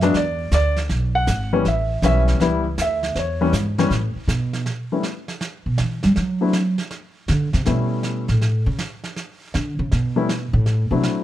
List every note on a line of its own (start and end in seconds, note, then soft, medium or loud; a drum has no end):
0.00 0.13 F#2 medium
0.00 0.13 F#3 medium
0.00 0.13 G#3 medium
0.00 0.14 B3 medium
0.00 0.14 D4 medium
0.00 0.12 E5 medium
0.00 snare soft
0.14 0.51 E2 medium
0.14 0.51 D5 medium
0.14 brush sweep soft
0.14 snare soft
0.52 0.88 D2 medium
0.52 0.77 D5 medium
0.52 snare medium
0.52 hi-hat pedal medium
0.76 snare soft
0.89 1.26 B1 medium
0.89 brush sweep medium
0.89 snare soft
1.15 1.62 F#5 medium
1.27 1.64 G#1 medium
1.27 snare medium
1.27 hi-hat pedal medium
1.53 1.64 E3 medium
1.53 1.64 G3 medium
1.53 1.64 B3 medium
1.53 1.64 C#4 medium
1.65 2.01 A1 medium
1.65 2.02 E5 medium
1.65 brush sweep soft
1.65 snare soft
2.02 2.39 B1 loud
2.02 2.39 E3 medium
2.02 2.39 G3 medium
2.02 2.40 B3 medium
2.02 2.40 C#4 medium
2.02 2.20 E5 loud
2.02 snare medium
2.02 hi-hat pedal medium
2.28 snare soft
2.40 2.76 C#2 medium
2.40 2.63 E3 medium
2.40 2.63 G3 medium
2.40 2.63 B3 medium
2.40 2.63 E4 medium
2.40 brush sweep soft
2.40 snare soft
2.78 3.14 D2 medium
2.78 3.15 E5 medium
2.78 snare medium
2.78 hi-hat pedal medium
3.03 snare soft
3.15 3.52 E2 medium
3.15 3.18 C5 soft
3.15 3.52 C#5 medium
3.15 brush sweep soft
3.15 snare soft
3.41 3.52 E3 medium
3.41 3.52 G3 medium
3.41 3.52 B3 medium
3.41 3.52 C#4 medium
3.53 3.89 G#2 medium
3.53 snare medium
3.53 hi-hat pedal medium
3.78 3.90 E3 medium
3.78 3.90 G3 medium
3.78 3.90 B3 medium
3.78 3.90 C#4 medium
3.78 snare soft
3.90 4.14 A2 medium
3.90 brush sweep soft
3.90 snare soft
4.15 muted upright bass stroke soft
4.28 4.64 B2 medium
4.28 snare medium
4.28 hi-hat pedal medium
4.53 snare soft
4.66 brush sweep soft
4.66 snare soft
4.92 5.03 G3 soft
4.92 5.03 A3 soft
4.92 5.03 B3 soft
4.92 5.03 C#4 soft
4.92 5.03 E4 medium
5.03 snare medium
5.28 snare soft
5.41 brush sweep soft
5.41 snare soft
5.66 5.78 B2 medium
5.78 6.03 E3 medium
5.78 snare medium
6.03 6.16 G3 medium
6.03 snare soft
6.16 6.75 F#3 medium
6.16 brush sweep soft
6.16 snare soft
6.41 6.52 F#3 medium
6.41 6.53 A3 soft
6.41 6.53 C4 soft
6.41 6.53 D4 medium
6.41 6.53 E4 medium
6.53 snare medium
6.78 snare soft
6.91 brush sweep soft
6.91 snare soft
7.28 7.53 D3 medium
7.28 snare medium
7.53 7.66 C3 medium
7.53 snare soft
7.65 8.25 B2 medium
7.65 8.24 G3 soft
7.65 8.24 A3 soft
7.65 8.24 B3 soft
7.65 8.24 C#4 medium
7.65 8.24 E4 medium
7.65 brush sweep soft
7.65 snare soft
8.03 snare medium
8.28 8.64 A2 medium
8.28 snare soft
8.41 brush sweep soft
8.41 snare soft
8.66 8.79 C#3 medium
8.79 snare medium
9.04 snare soft
9.16 brush sweep soft
9.16 snare soft
9.54 9.78 D3 medium
9.54 snare medium
9.79 9.91 C#3 medium
9.92 10.50 B2 medium
9.92 brush sweep soft
9.92 snare soft
10.16 10.27 G3 medium
10.16 10.28 A3 medium
10.16 10.28 B3 medium
10.16 10.28 C#4 medium
10.16 10.28 E4 medium
10.29 snare medium
10.53 10.88 A2 medium
10.66 brush sweep soft
10.66 snare soft
10.91 11.03 C3 medium
10.91 11.24 F#3 medium
10.91 11.24 A3 soft
10.91 11.24 C4 soft
10.91 11.24 D4 soft
10.91 11.24 E4 medium
11.03 snare medium